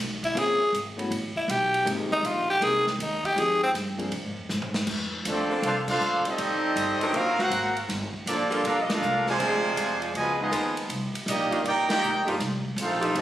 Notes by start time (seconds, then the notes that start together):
Already playing: B1
0.23 E4, kick, ride
0.35 A#1 A#3 C4 C#4 F4 G#4, ride
0.59 muted upright bass stroke
0.73 G#1, hi-hat pedal, ride
0.97 A3 B3 C#4 E4 F#4, ride
1.10 A1, ride
1.36 E4, muted upright bass stroke, kick
1.48 B1 G4, hi-hat pedal, ride
1.74 ride
1.84 G#1 G#3 A#3 C4 D#4 G4, ride
2.11 D#4, kick
2.23 A#1 F4, hi-hat pedal, ride
2.50 G4
2.60 C2 G#3 A#3 C4 D#4 G#4 A#4, ride
2.87 C4, snare
2.99 D#2 D#4, hi-hat pedal, ride
3.24 G4, kick, ride
3.36 F2 F3 G#3 C4 D#4 G4 G#4, ride
3.63 C4
3.74 G2, snare, hi-hat pedal, ride
3.98 F3 A#3 C4 D4 G#4, kick, ride
4.12 A#2, ride
4.24 G#2
4.37 F2
4.49 G#2, snare, hi-hat pedal
4.62 mid tom
4.74 snare
4.87 F2, kick, crash
5.25 D2 F3 A3 D4, hi-hat pedal, ride
5.29 C4 F4 A4 D5
5.49 D3 A#3 C4 A4
5.62 C2 A3 D4 F4 A4 C5, ride
5.66 D4 F5
5.88 A3 D4 F4 A4 C5 F5, kick, crash
6.01 A#1, hi-hat pedal
6.25 G3 C4 D#4 G4 A4, muted upright bass stroke, ride
6.29 D#5
6.38 A1, ride
6.76 G1, hi-hat pedal, ride
7.00 F#3 C4 D4 A#4, muted upright bass stroke, ride
7.13 A#1 A#3 C4 F4 F#4 A#4 F5, ride
7.39 A#3 C4 F#4 A#4 F5 F#5, snare
7.50 G#1, hi-hat pedal, ride
7.77 ride
7.89 G1, snare, ride
8.13 muted upright bass stroke, kick
8.26 A1 F3 A#3 D4 F4 A4 D5, hi-hat pedal, ride
8.50 G3 A#3 F4 A4, ride
8.64 A#1 A#3 D4 F4 A4 A#4 F5, ride
8.80 D#5
8.90 A#3 D4 F4 A4 A#4 F5, snare, ride
9.02 C2, hi-hat pedal
9.27 C3 F3 G#3 F4 C5 D5 G#5, snare
9.39 D2 F3 C4 D4 G#4, ride
9.77 F2, hi-hat pedal, ride
10.02 ride
10.14 C#2 B2 F3 G#3 F4 B4 D#5 G#5, ride
10.40 G#3 B3 D#4 F4 G#4 D#5
10.51 D#2 F3 B3 D#4 A#4, hi-hat pedal, ride
10.77 ride
10.89 C2, ride
11.14 muted upright bass stroke, ride
11.26 A#1 G3 A#3 D#4 G4 D5 D#5, hi-hat pedal, ride
11.51 D#3 A#3 D4 F4, muted upright bass stroke, kick, ride
11.64 A1 A#3 D#4 G4 A#4 D5 G5, ride
11.89 D#3 A#3 D4 D#4 F4 G4 A#4 D5 G5, snare, ride
12.01 B1, hi-hat pedal
12.14 A#1
12.26 G1 F3 G3 A3 A#3 D#4 F4 G4 A#4 D5 F5, ride
12.39 C2, snare, ride
12.65 kick
12.76 A#1 A3 C4 F4, hi-hat pedal, ride
12.81 D#4 A4 C5 F5
13.01 F3 A3 D#4 G4, ride
13.15 A1 C3 D#3 A3 G4 C5 D#5 A5, ride